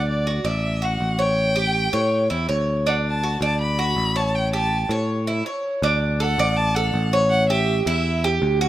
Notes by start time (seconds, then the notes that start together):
Already playing: D2 D4
0.09 D5
0.27 F#4
0.45 A1 D5 E5
0.82 F#4 F#5
1.00 A1
1.19 C#5 G5
1.56 G4
1.93 A2 C#5
2.30 E2 E4
2.49 D2 C#5
2.87 D4 F#5
3.08 A5
3.23 F#4
3.41 D2 D5 A5
3.61 B5
3.79 F#4
3.97 A1
4.16 C#5 A5
4.35 G5
4.53 G4 A5
4.89 A2 C#5
5.27 E4
5.46 C#5
5.82 D2 D4
6.20 A4 F#5
6.38 A1 D5
6.57 A5
6.75 A4 F#5
6.94 A1
7.13 C#5
7.30 F#5
7.50 G4 E5
7.86 E2 E4 E5
8.24 G4
8.42 D2
8.61 F#4